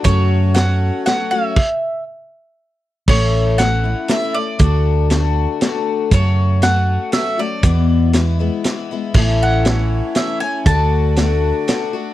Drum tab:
CC |------|x-----|x-----|------|
HH |x-x-x-|------|--x-x-|x-x-x-|
SD |--o-o-|------|--o-o-|--o-o-|
BD |o-----|o-----|o-----|o-----|

CC |------|------|x-----|------|
HH |x-x-x-|x-x-x-|--x-x-|x-x-x-|
SD |--o-o-|--o-o-|--o-o-|--o-o-|
BD |o-----|o-----|o-----|o-----|